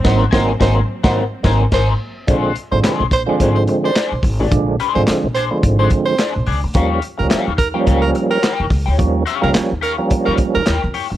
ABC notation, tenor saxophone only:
X:1
M:4/4
L:1/16
Q:"Swing 16ths" 1/4=107
K:Bbmix
V:1 name="Tenor saxophone"
c2 c2 c2 z c2 z c2 c2 z2 | z3 c z2 c z2 c z c3 z2 | z3 c z2 c z2 c z c3 z2 | z3 B z2 B z2 B z B3 z2 |
z3 B z2 B z2 B z B3 z2 |]